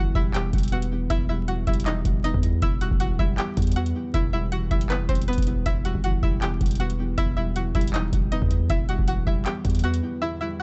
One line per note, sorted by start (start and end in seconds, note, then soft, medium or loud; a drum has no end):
0.00 0.14 G1 loud
0.00 0.33 E2 medium
0.00 0.91 E3 medium
0.00 0.13 G3 medium
0.00 0.13 F#4 medium
0.00 0.12 F#5 medium
0.15 0.52 E1 loud
0.15 0.52 G3 medium
0.15 0.32 E4 medium
0.15 0.31 E5 medium
0.15 kick loud
0.34 0.91 E2 medium
0.34 0.70 G4 medium
0.34 0.70 G5 medium
0.34 clap loud
0.34 closed hi-hat medium
0.53 1.08 E1 loud
0.53 1.28 G3 medium
0.53 kick loud
0.53 closed hi-hat medium
0.58 closed hi-hat medium
0.63 closed hi-hat medium
0.68 1.67 B3 medium
0.68 closed hi-hat medium
0.72 1.08 F#4 medium
0.72 1.08 F#5 medium
0.72 closed hi-hat soft
0.82 closed hi-hat medium
0.92 1.09 E2 medium
1.10 1.65 E1 loud
1.10 1.85 E2 medium
1.10 1.26 E4 loud
1.10 1.26 E5 loud
1.10 kick loud
1.10 closed hi-hat medium
1.29 1.66 G3 medium
1.29 1.45 E4 medium
1.29 1.45 E5 medium
1.48 2.43 E3 medium
1.48 1.64 F#4 medium
1.48 1.64 F#5 medium
1.48 closed hi-hat medium
1.67 2.04 E1 loud
1.67 2.03 G3 loud
1.67 1.83 E4 medium
1.67 1.83 E5 medium
1.67 kick loud
1.67 closed hi-hat soft
1.73 closed hi-hat medium
1.80 closed hi-hat medium
1.86 2.41 E2 medium
1.86 2.22 D#4 medium
1.86 2.22 D#5 medium
1.86 clap loud
1.86 closed hi-hat medium
2.05 2.33 E1 loud
2.05 2.62 G3 medium
2.05 kick loud
2.05 closed hi-hat medium
2.24 2.62 B3 medium
2.24 2.60 D#4 medium
2.24 2.60 D#5 medium
2.24 closed hi-hat medium
2.34 2.61 E2 loud
2.34 kick medium
2.43 2.60 E2 medium
2.43 closed hi-hat medium
2.62 2.90 E1 loud
2.62 3.36 E2 medium
2.62 2.79 E4 medium
2.62 2.78 E5 loud
2.62 kick loud
2.62 closed hi-hat medium
2.81 3.17 G3 medium
2.81 2.97 F#4 medium
2.81 2.97 F#5 medium
2.81 closed hi-hat medium
2.91 3.18 E1 loud
2.91 kick loud
3.00 3.95 E3 medium
3.00 3.16 F#4 medium
3.00 3.16 F#5 medium
3.00 closed hi-hat medium
3.19 3.37 E1 loud
3.19 3.56 G3 loud
3.19 3.36 E4 medium
3.19 3.35 E5 medium
3.19 kick loud
3.38 3.94 E2 medium
3.38 3.74 G4 medium
3.38 3.74 G5 medium
3.38 clap loud
3.38 closed hi-hat medium
3.57 3.93 E2 loud
3.57 4.31 G3 medium
3.57 kick loud
3.57 closed hi-hat medium
3.62 closed hi-hat medium
3.67 closed hi-hat medium
3.72 closed hi-hat medium
3.76 4.71 B3 loud
3.76 4.12 F#4 medium
3.76 4.12 F#5 medium
3.76 closed hi-hat soft
3.86 closed hi-hat medium
3.95 4.13 E2 medium
4.14 4.69 E1 loud
4.14 4.88 E2 medium
4.14 4.30 E4 medium
4.14 4.30 E5 loud
4.14 kick loud
4.14 closed hi-hat medium
4.33 4.70 G3 medium
4.33 4.49 E4 medium
4.33 4.49 E5 medium
4.51 5.47 E3 medium
4.51 4.68 F#4 medium
4.51 4.68 F#5 medium
4.51 closed hi-hat medium
4.71 4.91 E1 loud
4.71 5.08 G3 loud
4.71 4.87 E4 medium
4.71 4.87 E5 medium
4.71 kick loud
4.71 closed hi-hat soft
4.81 closed hi-hat medium
4.90 5.01 F#1 loud
4.90 5.45 E2 medium
4.90 5.06 B3 medium
4.90 5.06 B4 medium
4.90 clap loud
4.90 closed hi-hat medium
5.00 5.08 E1 loud
5.09 5.37 E1 loud
5.09 5.66 G3 medium
5.09 5.25 C4 medium
5.09 5.25 C5 medium
5.09 kick loud
5.09 closed hi-hat medium
5.15 closed hi-hat medium
5.22 closed hi-hat medium
5.28 5.66 B3 medium
5.28 5.64 B3 medium
5.28 5.64 B4 medium
5.28 closed hi-hat soft
5.33 closed hi-hat medium
5.38 5.65 E1 loud
5.38 kick medium
5.38 closed hi-hat medium
5.42 closed hi-hat medium
5.47 5.64 E2 medium
5.47 closed hi-hat medium
5.66 5.94 E1 loud
5.66 6.40 E2 medium
5.66 5.82 E4 medium
5.66 5.82 E5 loud
5.66 kick loud
5.66 closed hi-hat medium
5.85 6.21 G3 medium
5.85 6.01 F#4 medium
5.85 6.01 F#5 medium
5.85 closed hi-hat medium
5.95 6.22 G1 loud
5.95 kick loud
6.04 6.99 E3 medium
6.04 6.20 F#4 medium
6.04 6.20 F#5 medium
6.04 closed hi-hat medium
6.23 6.59 E1 loud
6.23 6.60 G3 medium
6.23 6.39 E4 medium
6.23 6.39 E5 medium
6.23 kick loud
6.42 6.98 E2 medium
6.42 6.78 G4 medium
6.42 6.77 G5 medium
6.42 clap loud
6.42 closed hi-hat medium
6.61 7.15 E1 loud
6.61 7.36 G3 medium
6.61 kick loud
6.61 closed hi-hat medium
6.66 closed hi-hat medium
6.71 closed hi-hat medium
6.75 7.74 B3 medium
6.75 closed hi-hat medium
6.80 7.16 F#4 medium
6.80 7.15 F#5 medium
6.80 closed hi-hat soft
6.90 closed hi-hat medium
7.00 7.17 E2 medium
7.18 7.72 E1 loud
7.18 7.93 E2 medium
7.18 7.34 E4 medium
7.18 7.34 E5 loud
7.18 kick loud
7.18 closed hi-hat medium
7.37 7.74 G3 medium
7.37 7.53 E4 medium
7.37 7.53 E5 medium
7.56 8.51 E3 medium
7.56 7.72 F#4 medium
7.56 7.72 F#5 medium
7.56 closed hi-hat medium
7.75 8.11 E1 loud
7.75 8.11 G3 loud
7.75 7.91 E4 medium
7.75 7.91 E5 medium
7.75 kick loud
7.75 closed hi-hat soft
7.81 closed hi-hat medium
7.87 closed hi-hat medium
7.94 8.49 E2 medium
7.94 8.30 D#4 medium
7.94 8.29 D#5 medium
7.94 clap loud
7.94 closed hi-hat medium
8.13 8.41 E1 loud
8.13 8.70 G3 medium
8.13 kick loud
8.13 closed hi-hat medium
8.32 8.70 B3 loud
8.32 8.68 D#4 medium
8.32 8.67 D#5 medium
8.32 closed hi-hat medium
8.42 8.69 E2 loud
8.42 kick loud
8.50 8.68 E2 medium
8.50 closed hi-hat medium
8.70 8.98 E1 loud
8.70 9.44 E2 medium
8.70 8.86 E4 medium
8.70 8.86 E5 loud
8.70 kick loud
8.70 closed hi-hat medium
8.89 9.25 G3 medium
8.89 9.05 F#4 medium
8.89 9.05 F#5 medium
8.89 closed hi-hat medium
8.99 9.26 E1 loud
8.99 kick loud
9.07 10.02 E3 medium
9.07 9.24 F#4 medium
9.07 9.24 F#5 medium
9.07 closed hi-hat medium
9.26 9.45 E1 loud
9.26 9.63 G3 loud
9.26 9.43 E4 medium
9.26 9.43 E5 medium
9.26 kick loud
9.45 10.01 E2 medium
9.45 9.82 G4 medium
9.45 9.81 G5 medium
9.45 clap loud
9.45 closed hi-hat medium
9.65 10.01 E2 loud
9.65 10.39 G3 medium
9.65 kick loud
9.65 closed hi-hat medium
9.70 closed hi-hat medium
9.75 closed hi-hat medium
9.79 closed hi-hat medium
9.84 10.63 B3 loud
9.84 10.20 F#4 medium
9.84 10.19 F#5 medium
9.84 closed hi-hat soft
9.94 closed hi-hat medium
10.03 10.21 E2 medium
10.22 10.63 E2 medium
10.22 10.38 E4 medium
10.22 10.38 E5 loud
10.40 10.63 G3 medium
10.40 10.57 E4 medium
10.40 10.57 E5 medium
10.59 10.63 E3 medium